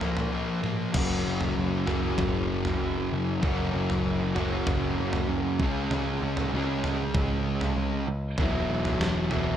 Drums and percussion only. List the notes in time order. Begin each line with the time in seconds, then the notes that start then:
0.01 floor tom
0.17 floor tom
0.64 mid tom
0.94 kick, floor tom, crash
1.41 floor tom
1.87 floor tom
2.18 kick, floor tom, mid tom
2.65 floor tom
3.43 kick, floor tom
3.90 floor tom
4.36 floor tom
4.67 kick, floor tom, mid tom
5.13 floor tom
5.60 kick
5.91 floor tom
6.37 floor tom
6.84 floor tom
7.14 kick, floor tom, mid tom
7.61 floor tom
8.38 kick, floor tom
8.85 floor tom
9.01 snare
9.31 floor tom